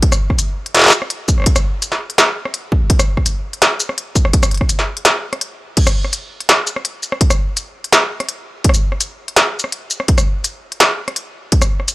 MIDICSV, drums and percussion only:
0, 0, Header, 1, 2, 480
1, 0, Start_track
1, 0, Tempo, 359281
1, 33, Time_signature, 4, 2, 24, 8
1, 15964, End_track
2, 0, Start_track
2, 0, Title_t, "Drums"
2, 33, Note_on_c, 9, 36, 119
2, 34, Note_on_c, 9, 42, 78
2, 161, Note_on_c, 9, 37, 77
2, 161, Note_on_c, 9, 82, 38
2, 167, Note_off_c, 9, 36, 0
2, 167, Note_off_c, 9, 42, 0
2, 295, Note_off_c, 9, 37, 0
2, 295, Note_off_c, 9, 82, 0
2, 401, Note_on_c, 9, 36, 62
2, 402, Note_on_c, 9, 37, 36
2, 516, Note_on_c, 9, 42, 65
2, 516, Note_on_c, 9, 82, 37
2, 534, Note_off_c, 9, 36, 0
2, 536, Note_off_c, 9, 37, 0
2, 649, Note_off_c, 9, 42, 0
2, 649, Note_off_c, 9, 82, 0
2, 883, Note_on_c, 9, 42, 36
2, 996, Note_off_c, 9, 42, 0
2, 996, Note_on_c, 9, 38, 54
2, 996, Note_on_c, 9, 42, 76
2, 1027, Note_off_c, 9, 38, 0
2, 1027, Note_on_c, 9, 38, 59
2, 1057, Note_off_c, 9, 38, 0
2, 1057, Note_on_c, 9, 38, 70
2, 1088, Note_off_c, 9, 38, 0
2, 1088, Note_on_c, 9, 38, 77
2, 1119, Note_off_c, 9, 38, 0
2, 1119, Note_on_c, 9, 38, 90
2, 1129, Note_off_c, 9, 42, 0
2, 1152, Note_off_c, 9, 38, 0
2, 1152, Note_on_c, 9, 38, 96
2, 1178, Note_off_c, 9, 38, 0
2, 1178, Note_on_c, 9, 38, 107
2, 1203, Note_off_c, 9, 38, 0
2, 1203, Note_on_c, 9, 38, 114
2, 1233, Note_on_c, 9, 82, 39
2, 1337, Note_off_c, 9, 38, 0
2, 1360, Note_on_c, 9, 37, 52
2, 1367, Note_off_c, 9, 82, 0
2, 1472, Note_on_c, 9, 42, 62
2, 1493, Note_off_c, 9, 37, 0
2, 1606, Note_off_c, 9, 42, 0
2, 1713, Note_on_c, 9, 82, 38
2, 1714, Note_on_c, 9, 36, 104
2, 1841, Note_on_c, 9, 37, 27
2, 1847, Note_off_c, 9, 82, 0
2, 1848, Note_off_c, 9, 36, 0
2, 1867, Note_off_c, 9, 37, 0
2, 1867, Note_on_c, 9, 37, 34
2, 1896, Note_off_c, 9, 37, 0
2, 1896, Note_on_c, 9, 37, 41
2, 1924, Note_off_c, 9, 37, 0
2, 1924, Note_on_c, 9, 37, 48
2, 1952, Note_on_c, 9, 42, 80
2, 1954, Note_on_c, 9, 36, 116
2, 2057, Note_off_c, 9, 37, 0
2, 2081, Note_on_c, 9, 37, 81
2, 2081, Note_on_c, 9, 82, 38
2, 2086, Note_off_c, 9, 42, 0
2, 2088, Note_off_c, 9, 36, 0
2, 2214, Note_off_c, 9, 37, 0
2, 2214, Note_off_c, 9, 82, 0
2, 2434, Note_on_c, 9, 42, 64
2, 2434, Note_on_c, 9, 82, 38
2, 2561, Note_on_c, 9, 38, 37
2, 2567, Note_off_c, 9, 42, 0
2, 2567, Note_off_c, 9, 82, 0
2, 2695, Note_off_c, 9, 38, 0
2, 2803, Note_on_c, 9, 42, 36
2, 2914, Note_off_c, 9, 42, 0
2, 2914, Note_on_c, 9, 38, 119
2, 2914, Note_on_c, 9, 42, 78
2, 3048, Note_off_c, 9, 38, 0
2, 3048, Note_off_c, 9, 42, 0
2, 3279, Note_on_c, 9, 37, 55
2, 3392, Note_on_c, 9, 42, 61
2, 3412, Note_off_c, 9, 37, 0
2, 3526, Note_off_c, 9, 42, 0
2, 3633, Note_on_c, 9, 36, 103
2, 3767, Note_off_c, 9, 36, 0
2, 3872, Note_on_c, 9, 42, 81
2, 3873, Note_on_c, 9, 36, 116
2, 4000, Note_on_c, 9, 37, 84
2, 4000, Note_on_c, 9, 82, 40
2, 4005, Note_off_c, 9, 42, 0
2, 4006, Note_off_c, 9, 36, 0
2, 4134, Note_off_c, 9, 37, 0
2, 4134, Note_off_c, 9, 82, 0
2, 4238, Note_on_c, 9, 37, 39
2, 4239, Note_on_c, 9, 36, 59
2, 4354, Note_on_c, 9, 42, 68
2, 4354, Note_on_c, 9, 82, 37
2, 4371, Note_off_c, 9, 37, 0
2, 4373, Note_off_c, 9, 36, 0
2, 4487, Note_off_c, 9, 42, 0
2, 4487, Note_off_c, 9, 82, 0
2, 4720, Note_on_c, 9, 42, 36
2, 4833, Note_off_c, 9, 42, 0
2, 4833, Note_on_c, 9, 38, 116
2, 4833, Note_on_c, 9, 42, 75
2, 4967, Note_off_c, 9, 38, 0
2, 4967, Note_off_c, 9, 42, 0
2, 5074, Note_on_c, 9, 82, 41
2, 5200, Note_on_c, 9, 37, 55
2, 5207, Note_off_c, 9, 82, 0
2, 5315, Note_on_c, 9, 42, 64
2, 5333, Note_off_c, 9, 37, 0
2, 5448, Note_off_c, 9, 42, 0
2, 5551, Note_on_c, 9, 36, 106
2, 5552, Note_on_c, 9, 82, 40
2, 5678, Note_on_c, 9, 37, 66
2, 5684, Note_off_c, 9, 36, 0
2, 5685, Note_off_c, 9, 82, 0
2, 5790, Note_on_c, 9, 42, 83
2, 5791, Note_on_c, 9, 36, 115
2, 5811, Note_off_c, 9, 37, 0
2, 5916, Note_on_c, 9, 37, 84
2, 5916, Note_on_c, 9, 82, 39
2, 5924, Note_off_c, 9, 36, 0
2, 5924, Note_off_c, 9, 42, 0
2, 6029, Note_on_c, 9, 42, 38
2, 6050, Note_off_c, 9, 37, 0
2, 6050, Note_off_c, 9, 82, 0
2, 6072, Note_off_c, 9, 42, 0
2, 6072, Note_on_c, 9, 42, 31
2, 6111, Note_off_c, 9, 42, 0
2, 6111, Note_on_c, 9, 42, 25
2, 6158, Note_on_c, 9, 36, 62
2, 6158, Note_on_c, 9, 37, 39
2, 6245, Note_off_c, 9, 42, 0
2, 6270, Note_on_c, 9, 42, 66
2, 6270, Note_on_c, 9, 82, 37
2, 6292, Note_off_c, 9, 36, 0
2, 6292, Note_off_c, 9, 37, 0
2, 6397, Note_on_c, 9, 38, 37
2, 6403, Note_off_c, 9, 42, 0
2, 6403, Note_off_c, 9, 82, 0
2, 6531, Note_off_c, 9, 38, 0
2, 6637, Note_on_c, 9, 42, 37
2, 6746, Note_off_c, 9, 42, 0
2, 6746, Note_on_c, 9, 38, 116
2, 6746, Note_on_c, 9, 42, 79
2, 6880, Note_off_c, 9, 38, 0
2, 6880, Note_off_c, 9, 42, 0
2, 7117, Note_on_c, 9, 37, 55
2, 7117, Note_on_c, 9, 42, 37
2, 7231, Note_off_c, 9, 42, 0
2, 7231, Note_on_c, 9, 42, 66
2, 7250, Note_off_c, 9, 37, 0
2, 7365, Note_off_c, 9, 42, 0
2, 7708, Note_on_c, 9, 42, 85
2, 7708, Note_on_c, 9, 49, 110
2, 7711, Note_on_c, 9, 36, 118
2, 7838, Note_on_c, 9, 37, 85
2, 7838, Note_on_c, 9, 82, 36
2, 7841, Note_off_c, 9, 42, 0
2, 7841, Note_off_c, 9, 49, 0
2, 7845, Note_off_c, 9, 36, 0
2, 7972, Note_off_c, 9, 37, 0
2, 7972, Note_off_c, 9, 82, 0
2, 8076, Note_on_c, 9, 37, 39
2, 8188, Note_on_c, 9, 42, 68
2, 8188, Note_on_c, 9, 82, 38
2, 8210, Note_off_c, 9, 37, 0
2, 8322, Note_off_c, 9, 42, 0
2, 8322, Note_off_c, 9, 82, 0
2, 8556, Note_on_c, 9, 42, 41
2, 8670, Note_off_c, 9, 42, 0
2, 8670, Note_on_c, 9, 38, 119
2, 8670, Note_on_c, 9, 42, 84
2, 8803, Note_off_c, 9, 38, 0
2, 8803, Note_off_c, 9, 42, 0
2, 8910, Note_on_c, 9, 82, 39
2, 9036, Note_on_c, 9, 37, 56
2, 9043, Note_off_c, 9, 82, 0
2, 9150, Note_on_c, 9, 42, 69
2, 9170, Note_off_c, 9, 37, 0
2, 9283, Note_off_c, 9, 42, 0
2, 9389, Note_on_c, 9, 82, 38
2, 9515, Note_on_c, 9, 37, 65
2, 9522, Note_off_c, 9, 82, 0
2, 9630, Note_on_c, 9, 36, 126
2, 9630, Note_on_c, 9, 42, 87
2, 9649, Note_off_c, 9, 37, 0
2, 9757, Note_on_c, 9, 37, 84
2, 9757, Note_on_c, 9, 82, 36
2, 9764, Note_off_c, 9, 36, 0
2, 9764, Note_off_c, 9, 42, 0
2, 9891, Note_off_c, 9, 37, 0
2, 9891, Note_off_c, 9, 82, 0
2, 10111, Note_on_c, 9, 42, 68
2, 10111, Note_on_c, 9, 82, 36
2, 10245, Note_off_c, 9, 42, 0
2, 10245, Note_off_c, 9, 82, 0
2, 10478, Note_on_c, 9, 42, 40
2, 10588, Note_off_c, 9, 42, 0
2, 10588, Note_on_c, 9, 38, 126
2, 10588, Note_on_c, 9, 42, 83
2, 10721, Note_off_c, 9, 38, 0
2, 10721, Note_off_c, 9, 42, 0
2, 10957, Note_on_c, 9, 37, 55
2, 10957, Note_on_c, 9, 42, 40
2, 11069, Note_off_c, 9, 42, 0
2, 11069, Note_on_c, 9, 42, 70
2, 11091, Note_off_c, 9, 37, 0
2, 11203, Note_off_c, 9, 42, 0
2, 11548, Note_on_c, 9, 42, 87
2, 11551, Note_on_c, 9, 36, 127
2, 11614, Note_on_c, 9, 37, 82
2, 11677, Note_on_c, 9, 82, 36
2, 11682, Note_off_c, 9, 42, 0
2, 11685, Note_off_c, 9, 36, 0
2, 11747, Note_off_c, 9, 37, 0
2, 11810, Note_off_c, 9, 82, 0
2, 11917, Note_on_c, 9, 37, 37
2, 12031, Note_on_c, 9, 42, 68
2, 12031, Note_on_c, 9, 82, 35
2, 12050, Note_off_c, 9, 37, 0
2, 12165, Note_off_c, 9, 42, 0
2, 12165, Note_off_c, 9, 82, 0
2, 12400, Note_on_c, 9, 42, 40
2, 12511, Note_off_c, 9, 42, 0
2, 12511, Note_on_c, 9, 38, 127
2, 12511, Note_on_c, 9, 42, 82
2, 12644, Note_off_c, 9, 38, 0
2, 12644, Note_off_c, 9, 42, 0
2, 12816, Note_on_c, 9, 82, 36
2, 12879, Note_on_c, 9, 37, 52
2, 12950, Note_off_c, 9, 82, 0
2, 12991, Note_on_c, 9, 42, 66
2, 13013, Note_off_c, 9, 37, 0
2, 13124, Note_off_c, 9, 42, 0
2, 13231, Note_on_c, 9, 82, 34
2, 13359, Note_on_c, 9, 37, 60
2, 13365, Note_off_c, 9, 82, 0
2, 13471, Note_on_c, 9, 42, 82
2, 13473, Note_on_c, 9, 36, 122
2, 13492, Note_off_c, 9, 37, 0
2, 13598, Note_on_c, 9, 37, 75
2, 13598, Note_on_c, 9, 82, 38
2, 13604, Note_off_c, 9, 42, 0
2, 13607, Note_off_c, 9, 36, 0
2, 13731, Note_off_c, 9, 37, 0
2, 13731, Note_off_c, 9, 82, 0
2, 13952, Note_on_c, 9, 42, 67
2, 13952, Note_on_c, 9, 82, 35
2, 14086, Note_off_c, 9, 42, 0
2, 14086, Note_off_c, 9, 82, 0
2, 14321, Note_on_c, 9, 42, 37
2, 14431, Note_off_c, 9, 42, 0
2, 14431, Note_on_c, 9, 38, 122
2, 14431, Note_on_c, 9, 42, 79
2, 14565, Note_off_c, 9, 38, 0
2, 14565, Note_off_c, 9, 42, 0
2, 14800, Note_on_c, 9, 37, 52
2, 14800, Note_on_c, 9, 42, 36
2, 14912, Note_off_c, 9, 42, 0
2, 14912, Note_on_c, 9, 42, 62
2, 14933, Note_off_c, 9, 37, 0
2, 15046, Note_off_c, 9, 42, 0
2, 15391, Note_on_c, 9, 42, 80
2, 15394, Note_on_c, 9, 36, 121
2, 15519, Note_on_c, 9, 37, 78
2, 15519, Note_on_c, 9, 82, 37
2, 15524, Note_off_c, 9, 42, 0
2, 15528, Note_off_c, 9, 36, 0
2, 15653, Note_off_c, 9, 37, 0
2, 15653, Note_off_c, 9, 82, 0
2, 15761, Note_on_c, 9, 37, 36
2, 15873, Note_on_c, 9, 42, 63
2, 15873, Note_on_c, 9, 82, 38
2, 15894, Note_off_c, 9, 37, 0
2, 15964, Note_off_c, 9, 42, 0
2, 15964, Note_off_c, 9, 82, 0
2, 15964, End_track
0, 0, End_of_file